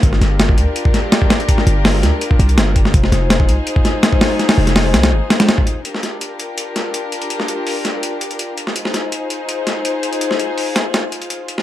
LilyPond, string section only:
\new Staff \with { instrumentName = "String section" } { \time 4/4 \key g \phrygian \tempo 4 = 165 << { <d' g' bes'>1~ | <d' g' bes'>1 | <ees' aes' c''>1~ | <ees' aes' c''>1 |
<d' g' bes'>1~ | <d' g' bes'>1 | <ees' aes' c''>1~ | <ees' aes' c''>1 | } \\ { f'1~ | f'1~ | f'1~ | f'1 |
f'1~ | f'1 | f'1~ | f'1 | } >> }